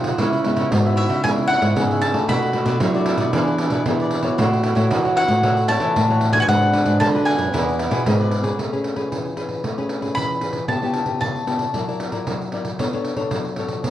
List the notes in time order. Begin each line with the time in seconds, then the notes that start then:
Already playing: C3 D#3 F#3 C4 D#4 F4
0.04 G#4 C5 F#5, pandeiro
0.18 C#3 G#3 B3 E4 B4 C#5 E5, pandeiro
0.33 pandeiro
0.43 G#3 B3 E4 B4 C#5 E5, pandeiro
0.56 C#3 E4 B4 C#5 E5, pandeiro
0.71 G#2 F#4, pandeiro
0.84 G#3 B3 E4 B4 C#5 E5, pandeiro
0.95 E4 B4 C#5 E5, pandeiro
1.08 C#3 B4 C#5 E5, pandeiro
1.23 C#3 G#3 B3 E4 B4 C#5 E5 G#5, pandeiro
1.38 pandeiro
1.47 E4 B4 C#5 E5 F#5, pandeiro
1.61 G#2 E4 B4 C#5 E5, pandeiro
1.76 G#2 C#3 G#3 B3 E4 G#4, pandeiro
1.90 B4 C#5 E5, pandeiro
2.01 A5, pandeiro
2.13 A3 D4 F#4 B4 C#5 E5, pandeiro
2.28 B2 D4 F#4 A4 B4 D5 B5, pandeiro
2.42 pandeiro
2.53 A3 D4 F#4 A4 B4 D5, pandeiro
2.66 B2 D4 A4 B4 D5, pandeiro
2.80 F#3 E4, pandeiro
2.94 A3 D4 F#4 A4 B4 D5, pandeiro
3.06 D4 A4 B4 D5, pandeiro
3.18 B2 A4 B4 D5, pandeiro
3.33 E3 B3 D4 E4 G#4 B4 D5, pandeiro
3.48 pandeiro
3.59 E4 G#4 B4 D5, pandeiro
3.70 B2 E4 G#4 B4 D5, pandeiro
3.86 B2 E3 B3 D4 E4 G#4, pandeiro
4.00 G#4 B4 D5, pandeiro
4.11 pandeiro
4.23 E4 F#4 G#4 B4 C#5 D5, pandeiro
4.38 A2 A3 E4 F#4 A4 C#5 F#5, pandeiro
4.53 pandeiro
4.63 E4 A4 C#5 F#5, pandeiro
4.75 A2 E4 F#4 A4 C#5 F#5, pandeiro
4.91 E3, pandeiro
5.05 E4 F#4 A4 C#5 F#5, pandeiro
5.16 E4 A4 C#5 F#5, pandeiro
5.28 A2 A4 C#5 F#5, pandeiro
5.43 A3 E4 F#4 A4 C#5 F#5, pandeiro
5.57 pandeiro
5.68 E4 F#4 A4 C#5 F#5 A5, pandeiro
5.80 E3 E4 A4 C#5 F#5, pandeiro
5.95 A2 E3, pandeiro
6.09 E4 F#4 A4 C#5 F#5, pandeiro
6.21 pandeiro
6.33 D4 F#4 A4 B4 C#5 F#5 G#5, pandeiro
6.40 F#5 G#5
6.47 G#2 G#3 D4 G#4 B4 F#5, pandeiro
6.62 pandeiro
6.73 D4 F#4 G#4 B4, pandeiro
6.77 F#5
6.85 G#2 D4 G#4 B4 F#5, pandeiro
7.00 D3 G#3 A5, pandeiro
7.14 D4 F#4 G#4 B4 F#5, pandeiro
7.25 D4 G#4 B4 F#5 G#5, pandeiro
7.38 F#2 G#4 B4 F#5, pandeiro
7.52 E2 E3 B3 D4 E4 G#4 B4 D5, pandeiro
7.68 pandeiro
7.79 E4 G#4 B4 D5, pandeiro
7.89 B2 D4 E4 G#4 B4 D5, pandeiro
8.06 G#2 B2 D4 G#4 B4, pandeiro
8.19 G#4 B4 D5, pandeiro
8.31 pandeiro
8.42 C#4 G#4 B4 D5, pandeiro
8.58 A3, pandeiro
8.72 C#4 G#4 B4, pandeiro
8.84 pandeiro
8.96 C#4 G#4 B4, pandeiro
9.11 E3, pandeiro
9.25 pandeiro
9.36 C#4 G#4 B4, pandeiro
9.49 pandeiro
9.64 A3, pandeiro
9.78 C#4 G#4 B4, pandeiro
9.89 pandeiro
10.01 C#4 G#4 B4, pandeiro
10.15 E3 B5, pandeiro
10.30 pandeiro
10.41 C#4 G#4 B4, pandeiro
10.53 pandeiro
10.68 C#3 B3 E4 G4 A5, pandeiro
10.82 B3 E4 G4, pandeiro
10.94 pandeiro
11.06 B3 E4 G4, pandeiro
11.21 C#3 A5, pandeiro
11.36 pandeiro
11.47 B3 E4 G4, pandeiro
11.59 pandeiro
11.74 F#3 E4 A#4 D5, pandeiro
11.88 E4 A#4 D5, pandeiro
12.00 pandeiro
12.12 E4 A#4 D5, pandeiro
12.27 F#3, pandeiro
12.41 pandeiro
12.52 E4 A#4 D5, pandeiro
12.65 pandeiro
12.79 B3 D4 A4 C#5, pandeiro
12.93 D4 A4 C#5, pandeiro
13.05 pandeiro
13.17 D4 A4 C#5, pandeiro
13.31 F#3, pandeiro
13.45 pandeiro
13.57 D4 A4 C#5, pandeiro
13.69 pandeiro
13.84 B3, pandeiro